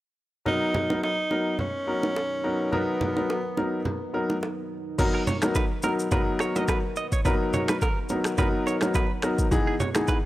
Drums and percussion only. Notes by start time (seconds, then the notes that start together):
0.46 low conga
0.74 low bongo, low conga
0.90 low bongo
1.03 high bongo
1.31 low bongo
1.59 low conga
2.03 low bongo
2.16 high bongo
2.73 low conga
3.01 low bongo, low conga
3.17 low bongo
3.30 high bongo
3.57 low bongo
3.85 low conga
4.30 low bongo
4.43 high bongo
4.99 kick, crash, low conga, shaker
5.27 low conga, shaker
5.42 finger snap, cross-stick, low bongo, shaker
5.55 kick, high bongo, shaker
5.83 low bongo, shaker
5.99 shaker
6.11 kick, low conga, shaker
6.39 finger snap, cross-stick, high bongo, shaker
6.56 low bongo, shaker
6.68 finger snap, kick, cross-stick, high bongo, shaker
6.96 shaker
7.12 kick, shaker
7.25 kick, low conga, shaker
7.53 low conga, shaker
7.68 finger snap, cross-stick, low bongo, shaker
7.81 kick, high bongo, shaker
8.09 low bongo, shaker
8.24 finger snap, cross-stick, shaker
8.38 kick, low conga, shaker
8.67 high bongo, shaker
8.81 finger snap, cross-stick, low bongo, shaker
8.94 kick, high bongo, shaker
9.22 finger snap, cross-stick, shaker
9.39 kick, shaker
9.52 kick, low conga, shaker
9.80 low conga, shaker
9.95 finger snap, cross-stick, low bongo, shaker
10.08 kick, high bongo, shaker